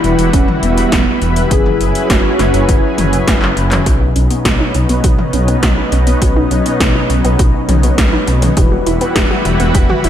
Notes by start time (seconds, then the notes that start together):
Already playing: E3 G3 E4 F#4 B4
0.04 E1 G3 E4 F#4 B4, closed hi-hat
0.19 E1, closed hi-hat
0.33 E1 C#4, kick, closed hi-hat
0.48 mid tom
0.63 E1 B3, closed hi-hat
0.78 closed hi-hat
0.92 E1, kick, snare, closed hi-hat
1.22 E1, closed hi-hat
1.36 closed hi-hat
1.51 F#1 F#3 C#4 E4 G#4 B4, kick, closed hi-hat
1.66 mid tom
1.80 F#1, closed hi-hat
1.95 closed hi-hat
2.10 F#1 F#4, kick, snare, closed hi-hat
2.39 F#1 F#3 C#4 E4 B4, snare, closed hi-hat
2.54 F#1, closed hi-hat
2.69 F#1 E4, kick, closed hi-hat
2.98 F#1, closed hi-hat, mid tom
3.13 closed hi-hat
3.28 F#1, kick, snare, closed hi-hat
3.42 clap
3.57 F#1, closed hi-hat
3.72 clap, closed hi-hat, mid tom
3.86 B1 B2 F#3 B3 C#4 D#4 F#4 B4, kick, closed hi-hat
4.01 D#4
4.16 B1 C#4, closed hi-hat
4.31 B3, closed hi-hat
4.45 B1 F#4, kick, snare, closed hi-hat
4.60 D#4
4.74 B1 B2 F#3 C#4 D#4 B4, closed hi-hat
4.89 B1 B3, closed hi-hat
5.04 B1 F#4, kick, closed hi-hat
5.19 D#4, mid tom
5.33 B1 C#4, closed hi-hat
5.48 B3, closed hi-hat
5.63 B1 F#4, kick, snare, closed hi-hat
5.78 D#4
5.92 B1 C#4, closed hi-hat
6.07 B3, closed hi-hat
6.22 B1 B2 F#3 C#4 D#4 F#4 B4, kick, closed hi-hat
6.36 D#4
6.51 B1 C#4, closed hi-hat
6.66 B3, closed hi-hat
6.80 B1 F#4, kick, snare, closed hi-hat
6.95 D#4
7.10 B1 B2 F#3 C#4 D#4 B4, closed hi-hat
7.25 B1 B3, closed hi-hat
7.39 B1 F#4, kick, closed hi-hat
7.54 D#4
7.69 B1 C#4, closed hi-hat, mid tom
7.83 B3, closed hi-hat
7.98 B1 F#4, kick, snare, closed hi-hat
8.13 D#4
8.27 B1 C#4, closed hi-hat
8.42 B3, closed hi-hat, mid tom
8.56 E1 E3 G3 E4 F#4 G4 B4, kick, closed hi-hat
8.72 F#4
8.86 E1 E4, closed hi-hat
9.01 B3, closed hi-hat
9.16 E1 G4, kick, snare, closed hi-hat
9.31 F#4
9.45 E1 G3 E4 F#4 B4, closed hi-hat
9.60 E1 B3, closed hi-hat
9.75 E1 G4, kick, closed hi-hat
9.89 F#4, mid tom
10.04 E1 E4, closed hi-hat